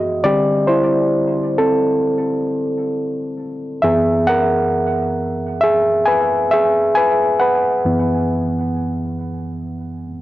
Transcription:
0.00 0.26 F#2 medium
0.00 0.26 E3 soft
0.00 0.26 B3 medium
0.00 0.21 F#4 medium
0.00 0.26 G#4 medium
0.00 0.27 D#5 medium
0.00 0.26 E5 loud
0.24 3.78 D3 medium
0.24 3.78 G3 medium
0.24 1.58 C4 medium
0.24 0.45 G4 medium
0.24 0.44 D5 loud
0.67 1.54 E4 medium
0.67 1.60 C5 medium
1.58 3.34 C4 medium
1.58 3.33 A4 medium
3.82 7.37 F#2 medium
3.82 7.37 E3 soft
3.82 7.37 B3 medium
3.82 4.25 G#4 medium
3.82 4.28 E5 medium
4.27 5.58 A#4 medium
4.27 5.65 F#5 medium
5.61 6.04 G#4 medium
5.61 6.07 E5 loud
6.05 6.49 B4 medium
6.05 6.47 G#5 medium
6.51 6.94 G#4 medium
6.51 6.93 E5 medium
6.95 7.38 B4 medium
6.95 7.41 G#5 medium
7.40 10.05 B4 medium
7.40 10.05 F#5 medium
7.85 10.22 F#2 soft
7.85 10.22 E3 medium
7.85 10.22 B3 medium

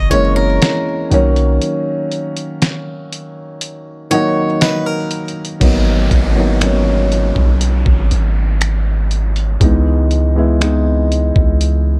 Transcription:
0.00 0.10 F#1 loud
0.10 0.59 F#1 loud
0.10 1.07 E3 medium
0.10 1.07 G#3 medium
0.10 1.08 A#3 medium
0.10 1.08 C#4 loud
0.10 0.35 C#5 medium
0.10 closed hi-hat medium
0.36 1.07 A#4 medium
0.62 snare loud
0.62 closed hi-hat medium
1.10 1.59 B1 loud
1.10 2.71 D#3 medium
1.10 2.71 F#3 medium
1.10 2.72 A#3 medium
1.10 2.72 C#4 loud
1.10 closed hi-hat medium
1.36 closed hi-hat soft
1.62 closed hi-hat medium
2.12 closed hi-hat soft
2.37 closed hi-hat medium
2.62 snare loud
2.62 closed hi-hat medium
3.13 closed hi-hat medium
3.61 closed hi-hat medium
4.10 5.07 D#3 medium
4.10 5.08 F#3 medium
4.10 5.08 A#3 medium
4.10 5.09 D#4 loud
4.10 4.61 C#5 medium
4.10 4.58 F#5 medium
4.10 closed hi-hat medium
4.61 4.86 B4 medium
4.61 5.57 D#5 medium
4.61 snare loud
4.61 closed hi-hat medium
4.86 5.57 A#4 medium
5.11 closed hi-hat medium
5.11 open hi-hat medium
5.28 closed hi-hat medium
5.45 closed hi-hat medium
5.60 6.09 G#1 loud
5.60 6.09 F#3 medium
5.60 6.09 A#3 medium
5.60 6.10 B3 medium
5.60 6.10 D#4 medium
5.60 kick loud
5.60 closed hi-hat medium
5.60 crash medium
5.60 downlifter medium
6.11 7.32 G#1 loud
6.11 kick medium
6.11 closed hi-hat medium
6.35 6.52 F#3 medium
6.35 6.52 A#3 medium
6.35 6.53 B3 medium
6.35 6.53 D#4 medium
6.60 7.89 F#3 medium
6.60 7.90 A#3 medium
6.60 7.90 B3 medium
6.60 7.91 C#4 medium
6.60 finger snap loud
6.60 closed hi-hat medium
7.12 closed hi-hat medium
7.36 7.84 B1 loud
7.36 kick medium
7.61 closed hi-hat medium
7.86 8.10 G#1 loud
7.86 kick medium
8.11 9.57 G#1 loud
8.11 closed hi-hat medium
8.61 finger snap loud
8.61 closed hi-hat medium
9.11 closed hi-hat medium
9.36 closed hi-hat soft
9.60 11.32 C#2 loud
9.60 10.09 E3 medium
9.60 10.09 G#3 medium
9.60 10.10 B3 medium
9.60 10.10 D#4 medium
9.60 kick loud
9.60 closed hi-hat medium
10.11 closed hi-hat medium
10.35 10.52 E3 medium
10.35 10.52 G#3 medium
10.35 10.53 B3 medium
10.35 10.53 E4 medium
10.60 11.89 E3 medium
10.60 11.89 G#3 medium
10.60 11.90 B3 medium
10.60 11.91 D#4 medium
10.60 finger snap loud
10.60 closed hi-hat medium
11.12 closed hi-hat medium
11.36 12.00 C#2 loud
11.36 kick medium
11.61 closed hi-hat medium

